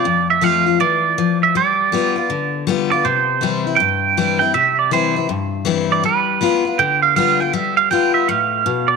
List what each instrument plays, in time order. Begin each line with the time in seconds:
Already playing: clean electric guitar D5
0.05 steel-string acoustic guitar F2
0.30 clean electric guitar E5
0.41 steel-string acoustic guitar F3 A3 C4 F4, clean electric guitar F5
0.66 steel-string acoustic guitar C4 F4
0.80 steel-string acoustic guitar E3, clean electric guitar D5
1.18 steel-string acoustic guitar F3
1.43 clean electric guitar E5
1.55 steel-string acoustic guitar G3, clean electric guitar D5
1.92 steel-string acoustic guitar G3 B3 F4
2.16 steel-string acoustic guitar B3 F4
2.30 steel-string acoustic guitar D3
2.67 steel-string acoustic guitar G3 B3 F4
2.91 steel-string acoustic guitar B3 F4, clean electric guitar D5
3.05 steel-string acoustic guitar C3, clean electric guitar C5
3.41 steel-string acoustic guitar E3 G3 C4 E4
3.67 steel-string acoustic guitar C4 E4
3.76 steel-string acoustic guitar G2, clean electric guitar G5
4.17 steel-string acoustic guitar E3 G3 C4 E4
4.39 steel-string acoustic guitar C4 E4, clean electric guitar G5
4.54 steel-string acoustic guitar C3, clean electric guitar E5
4.79 clean electric guitar D5
4.91 steel-string acoustic guitar E3 G3 C4 E4, clean electric guitar C5
5.16 steel-string acoustic guitar C4 E4
5.29 steel-string acoustic guitar G2
5.65 steel-string acoustic guitar E3 G3 C4 E4
5.92 clean electric guitar D5
6.04 steel-string acoustic guitar G3, clean electric guitar B4
6.41 steel-string acoustic guitar G3 B3 F4
6.65 steel-string acoustic guitar B3 F4
6.79 steel-string acoustic guitar D3, clean electric guitar G5
7.02 clean electric guitar F5
7.16 steel-string acoustic guitar G3 B3 F4, clean electric guitar F5
7.40 steel-string acoustic guitar B3 F4, clean electric guitar G5
7.53 steel-string acoustic guitar G3, clean electric guitar E5
7.77 clean electric guitar F5
7.91 steel-string acoustic guitar G3 B3 F4, clean electric guitar G5
8.14 clean electric guitar E5
8.28 steel-string acoustic guitar A2, clean electric guitar F5
8.66 steel-string acoustic guitar B2
8.88 clean electric guitar D5